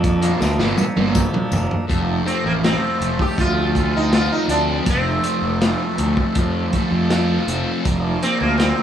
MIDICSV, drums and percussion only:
0, 0, Header, 1, 2, 480
1, 0, Start_track
1, 0, Key_signature, -1, "major"
1, 0, Tempo, 744417
1, 1219, Time_signature, 4, 2, 24, 8
1, 5692, End_track
2, 0, Start_track
2, 0, Title_t, "Drums"
2, 25, Note_on_c, 9, 36, 82
2, 25, Note_on_c, 9, 42, 63
2, 32, Note_on_c, 9, 54, 28
2, 89, Note_off_c, 9, 42, 0
2, 90, Note_off_c, 9, 36, 0
2, 97, Note_off_c, 9, 54, 0
2, 144, Note_on_c, 9, 42, 64
2, 209, Note_off_c, 9, 42, 0
2, 263, Note_on_c, 9, 38, 59
2, 270, Note_on_c, 9, 54, 78
2, 327, Note_off_c, 9, 38, 0
2, 334, Note_off_c, 9, 54, 0
2, 383, Note_on_c, 9, 38, 56
2, 447, Note_off_c, 9, 38, 0
2, 500, Note_on_c, 9, 48, 64
2, 503, Note_on_c, 9, 54, 70
2, 564, Note_off_c, 9, 48, 0
2, 567, Note_off_c, 9, 54, 0
2, 626, Note_on_c, 9, 48, 64
2, 690, Note_off_c, 9, 48, 0
2, 740, Note_on_c, 9, 54, 92
2, 742, Note_on_c, 9, 36, 78
2, 747, Note_on_c, 9, 47, 76
2, 805, Note_off_c, 9, 54, 0
2, 807, Note_off_c, 9, 36, 0
2, 812, Note_off_c, 9, 47, 0
2, 865, Note_on_c, 9, 45, 72
2, 930, Note_off_c, 9, 45, 0
2, 978, Note_on_c, 9, 54, 76
2, 987, Note_on_c, 9, 43, 86
2, 1043, Note_off_c, 9, 54, 0
2, 1051, Note_off_c, 9, 43, 0
2, 1104, Note_on_c, 9, 43, 82
2, 1169, Note_off_c, 9, 43, 0
2, 1222, Note_on_c, 9, 36, 98
2, 1227, Note_on_c, 9, 42, 74
2, 1286, Note_off_c, 9, 36, 0
2, 1292, Note_off_c, 9, 42, 0
2, 1467, Note_on_c, 9, 42, 51
2, 1531, Note_off_c, 9, 42, 0
2, 1705, Note_on_c, 9, 38, 89
2, 1705, Note_on_c, 9, 42, 68
2, 1769, Note_off_c, 9, 42, 0
2, 1770, Note_off_c, 9, 38, 0
2, 1944, Note_on_c, 9, 42, 53
2, 2009, Note_off_c, 9, 42, 0
2, 2059, Note_on_c, 9, 36, 81
2, 2123, Note_off_c, 9, 36, 0
2, 2180, Note_on_c, 9, 36, 94
2, 2184, Note_on_c, 9, 42, 71
2, 2244, Note_off_c, 9, 36, 0
2, 2249, Note_off_c, 9, 42, 0
2, 2420, Note_on_c, 9, 36, 73
2, 2424, Note_on_c, 9, 42, 54
2, 2484, Note_off_c, 9, 36, 0
2, 2489, Note_off_c, 9, 42, 0
2, 2661, Note_on_c, 9, 38, 103
2, 2661, Note_on_c, 9, 42, 71
2, 2725, Note_off_c, 9, 42, 0
2, 2726, Note_off_c, 9, 38, 0
2, 2897, Note_on_c, 9, 42, 57
2, 2961, Note_off_c, 9, 42, 0
2, 3135, Note_on_c, 9, 42, 82
2, 3137, Note_on_c, 9, 36, 102
2, 3199, Note_off_c, 9, 42, 0
2, 3201, Note_off_c, 9, 36, 0
2, 3376, Note_on_c, 9, 42, 60
2, 3441, Note_off_c, 9, 42, 0
2, 3621, Note_on_c, 9, 42, 75
2, 3622, Note_on_c, 9, 38, 92
2, 3685, Note_off_c, 9, 42, 0
2, 3686, Note_off_c, 9, 38, 0
2, 3856, Note_on_c, 9, 42, 57
2, 3921, Note_off_c, 9, 42, 0
2, 3978, Note_on_c, 9, 36, 74
2, 4043, Note_off_c, 9, 36, 0
2, 4095, Note_on_c, 9, 42, 77
2, 4100, Note_on_c, 9, 36, 102
2, 4160, Note_off_c, 9, 42, 0
2, 4164, Note_off_c, 9, 36, 0
2, 4338, Note_on_c, 9, 42, 60
2, 4341, Note_on_c, 9, 36, 72
2, 4403, Note_off_c, 9, 42, 0
2, 4406, Note_off_c, 9, 36, 0
2, 4580, Note_on_c, 9, 42, 79
2, 4581, Note_on_c, 9, 38, 94
2, 4645, Note_off_c, 9, 42, 0
2, 4646, Note_off_c, 9, 38, 0
2, 4824, Note_on_c, 9, 42, 56
2, 4888, Note_off_c, 9, 42, 0
2, 5064, Note_on_c, 9, 42, 75
2, 5065, Note_on_c, 9, 36, 102
2, 5128, Note_off_c, 9, 42, 0
2, 5130, Note_off_c, 9, 36, 0
2, 5304, Note_on_c, 9, 42, 52
2, 5368, Note_off_c, 9, 42, 0
2, 5543, Note_on_c, 9, 42, 67
2, 5544, Note_on_c, 9, 38, 97
2, 5608, Note_off_c, 9, 38, 0
2, 5608, Note_off_c, 9, 42, 0
2, 5692, End_track
0, 0, End_of_file